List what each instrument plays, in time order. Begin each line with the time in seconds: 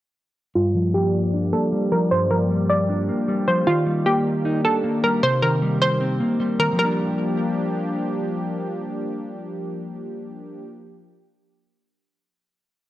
0.55 clean electric guitar G2, analog synth pad F3 A#3 G4 D5, synth pluck F4
0.75 clean electric guitar F3
0.94 clean electric guitar G3, synth pluck G4
1.33 clean electric guitar D4
1.53 clean electric guitar A#3, synth pluck A4
1.72 clean electric guitar G3
1.92 clean electric guitar F3, synth pluck A#4
2.11 clean electric guitar G2, synth pluck C5
2.31 clean electric guitar F3, synth pluck A#4
2.50 clean electric guitar G3
2.70 synth pluck D5
2.89 clean electric guitar D4
3.09 clean electric guitar A#3
3.28 clean electric guitar G3
3.48 clean electric guitar F3, synth pluck C5
3.67 clean electric guitar D#3, analog synth pad D#3 A#3, synth pluck F4
3.87 clean electric guitar G3
4.06 clean electric guitar A#3, synth pluck G4
4.45 clean electric guitar D#4
4.65 clean electric guitar D4, synth pluck A4
4.84 clean electric guitar A#3
5.04 clean electric guitar G3, synth pluck A#4
5.23 clean electric guitar C3, analog synth pad C4, synth pluck C5
5.42 clean electric guitar D#3, synth pluck A#4
5.62 clean electric guitar G3
5.82 synth pluck C5
6.01 clean electric guitar C4
6.20 clean electric guitar A#3
6.40 clean electric guitar G3
6.59 clean electric guitar D#3, synth pluck A#4
6.73 clean electric guitar F3 G3
6.79 analog synth pad F3 A#3 D4 G4, clean electric guitar A#3, synth pluck A#4
6.85 clean electric guitar D4